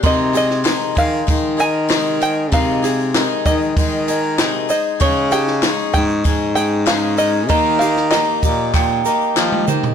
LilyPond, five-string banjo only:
\new Staff \with { instrumentName = "Five-string banjo" } { \time 4/4 \key aes \lydian \tempo 4 = 96 ees''8 ees''4 f''4 aes''4 g''8 | f''4. ees''2 ees''8 | des''8 g''4 g''4 g''8 f''8 ees''8 | ees''8 f''8 ees''4 r2 | }